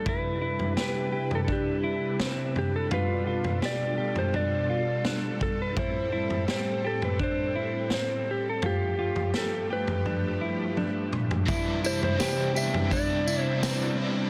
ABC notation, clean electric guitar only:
X:1
M:4/4
L:1/8
Q:1/4=84
K:C
V:1 name="Clean electric guitar"
E E G G D E C2 | F F G G D F D2 | E E G G D E C2 | F F G G D E D2 |
E E G G D E C2 |]